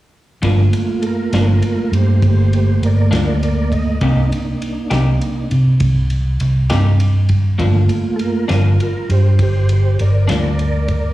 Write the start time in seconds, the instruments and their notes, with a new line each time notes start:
0.42 fingered electric bass G1, clean electric guitar G2 F3 A#3 D4, tonewheel organ A3 A#3 F4, kick, ride
0.73 ride
1.02 tonewheel organ A4, ride
1.06 tonewheel organ F4 A#4
1.33 fingered electric bass G1, clean electric guitar G2 F3 A#3 D4, tonewheel organ F4 A#4, snare, ride
1.62 tonewheel organ F4 A#4, ride
1.92 fingered electric bass G2, tonewheel organ G4 C5, ride
2.22 fingered electric bass G1, tonewheel organ G4 C5, kick, ride
2.53 tonewheel organ G4 C5, ride
2.82 fingered electric bass G1, tonewheel organ A#4 D5, ride
3.11 fingered electric bass D2, clean electric guitar G2 F3 A#3 D4, tonewheel organ A#4 D5, snare, ride
3.43 tonewheel organ A#4 D5, ride
3.72 tonewheel organ D#5, kick, ride
4.01 fingered electric bass C2, clean electric guitar C3 A#3 D#4 G4, tonewheel organ A#3 D4 D#4, kick, ride
4.32 ride
4.62 ride
4.90 fingered electric bass C2, clean electric guitar C3 A#3 D#4 G4, snare, ride
5.21 tonewheel organ A#3 D4 D#4, ride
5.51 fingered electric bass C3, ride
5.80 fingered electric bass C2, kick, ride
6.10 ride
6.40 fingered electric bass C2, ride
6.70 fingered electric bass G2, clean electric guitar C3 A#3 D#4 G4, snare, ride
7.00 ride
7.29 kick, ride
7.58 fingered electric bass G1, clean electric guitar G2 F3 A#3 D4, tonewheel organ A3 A#3 F4, kick, ride
7.89 ride
8.16 tonewheel organ A4, ride
8.21 tonewheel organ F4 A#4
8.48 fingered electric bass G1, clean electric guitar G2 F3 A#3 D4, tonewheel organ F4 A#4, snare, ride
8.80 tonewheel organ F4 A#4, ride
9.09 fingered electric bass G2, tonewheel organ G4 C5, ride
9.39 fingered electric bass G1, tonewheel organ G4 C5, kick, ride
9.69 tonewheel organ G4 C5, ride
9.99 fingered electric bass G1, tonewheel organ A#4 D5, ride
10.28 fingered electric bass D2, clean electric guitar G2 F3 A#3 D4, tonewheel organ A#4, snare, ride
10.33 tonewheel organ D5
10.59 tonewheel organ A#4 D5, ride
10.88 tonewheel organ A#4 D5, kick, ride